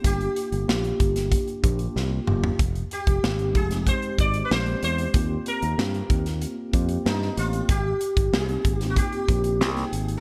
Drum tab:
HH |xxxx-xxxxxxx----|xxxx-xxxxxxx-xxx|x-xx-xxxx-xx--xx|x-xx-xxxxxxx-xxx|
SD |----o--o----o---|----o--o----o---|----o--o----oo--|----o--o----oo--|
T2 |--------------o-|----------------|----------------|----------------|
FT |---------------o|----------------|----------------|----------------|
BD |o-----o-o-o-----|o--o--o-o-o-----|o-----o---o-----|o--o--o-o-o-----|